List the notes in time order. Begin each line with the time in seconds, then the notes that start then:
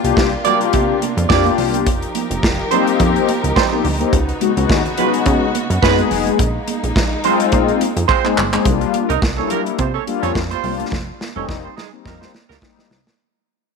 Already playing: C3 A#3 D4 F4
0.04 C2 A#3 D4 F4 G4, closed hi-hat
0.17 C2, kick, snare, muted conga
0.45 A#3 D4 F4 F#4 G4 D5, closed hi-hat, muted conga, low conga
0.52 G4
0.61 closed hi-hat
0.73 C3, kick, closed hi-hat, high conga
1.02 closed hi-hat, muted conga, high conga
1.17 F2, closed hi-hat
1.29 F2 A#3 D4 F4 G4 D5, kick, snare, muted conga
1.45 closed hi-hat, high conga
1.58 C2, open hi-hat, muted conga, low conga
1.74 closed hi-hat, high conga
1.86 F1 F3 D#4 G4 A#4, kick, closed hi-hat
2.02 closed hi-hat
2.15 closed hi-hat, muted conga, high conga
2.31 F1, closed hi-hat
2.43 F1, kick, snare, muted conga
2.71 G3 A#3 C4 D#4 G4 C5, closed hi-hat, low conga
2.87 closed hi-hat
2.99 F2, kick, closed hi-hat, muted conga, high conga
3.16 closed hi-hat
3.29 closed hi-hat, muted conga, high conga
3.44 C#2, closed hi-hat
3.56 G3 C4 D#4 C5, kick, snare
3.71 A#3 C4 D#4 G4, high conga
3.84 D2, open hi-hat, low conga
4.00 A#3 C4 D#4 G4, closed hi-hat, high conga
4.12 C#2 C#3 B3 F#4, kick, closed hi-hat, muted conga
4.29 closed hi-hat
4.41 G#3 B3 D#4 F#4, closed hi-hat, high conga
4.57 C#2 G#3 B3 D#4 F#4, closed hi-hat
4.69 D#2, kick, snare
4.86 closed hi-hat
4.97 G#3 B3 D#4 F4 F#4 B4, closed hi-hat, muted conga, low conga
5.05 F#4
5.14 closed hi-hat
5.25 C#3, kick, closed hi-hat, muted conga, high conga
5.55 closed hi-hat, high conga
5.70 F#2, closed hi-hat
5.82 F#2 G#3 B3 D#4 F#4 G#4 B4, kick, snare
5.98 closed hi-hat, high conga
6.11 F1, open hi-hat, muted conga, low conga
6.26 closed hi-hat, high conga
6.39 A#1 G#3 A#3 D#4, kick, closed hi-hat, muted conga
6.68 closed hi-hat, muted conga, high conga
6.83 A#1, closed hi-hat
6.96 A#1, kick, snare
7.24 G#3 C4 D#4 F4 C5, closed hi-hat, low conga
7.40 closed hi-hat
7.52 A#2, kick, closed hi-hat, muted conga, high conga
7.68 closed hi-hat
7.81 closed hi-hat, high conga
7.97 F2, closed hi-hat
8.08 G#3 C4 F4 C5, kick, clap, muted conga
8.24 G#3 C4 D#4 G#4, clap, high conga
8.37 G1, clap, low conga
8.53 G#3 C4 D#4 G#4, clap, high conga
8.65 C2 G3 A#3 D4 F4, kick, closed hi-hat
8.81 closed hi-hat
8.94 closed hi-hat, muted conga, high conga
9.09 C2 D#4 A#4 D#5, closed hi-hat
9.22 C2, kick, snare, muted conga
9.38 G3 A#3 C#4 D4 E4 A4 C#5
9.50 G3 A#3 F4 A#4, closed hi-hat, muted conga, low conga
9.66 closed hi-hat
9.78 C3 G3 C4 F4 C5, kick, closed hi-hat, high conga
9.94 C#4 A4 C#5
10.07 G3 A#3 D4 F4, closed hi-hat, high conga
10.22 F2 C#4 A4 C#5, closed hi-hat
10.35 F2, kick, snare
10.50 G3 C4 F4 C5, closed hi-hat, high conga
10.64 C2 G3 A#3 D4 F4, open hi-hat, low conga
10.79 closed hi-hat, high conga
10.92 F1, kick, snare
11.21 snare, muted conga, high conga
11.36 F1 G3 A#3 C4 C#4 D#4 A4 C#5
11.49 F1, kick, snare
11.64 G3 C4 D#4 C5
11.77 G#3 D#4 G#4, snare, muted conga, low conga
11.92 G3 A#3 C4 D#4
12.05 F2 G3 A#3 D#4 A#4, kick, snare, muted conga, high conga
12.21 G3 C4 D#4 C5, snare
12.34 snare, high conga
12.49 C#2 G3 A#3 D#4 A#4, snare
12.60 G3 A#3 C4 D#4, kick, snare, muted conga
12.77 snare, high conga
12.90 C2, snare, low conga
13.05 snare, high conga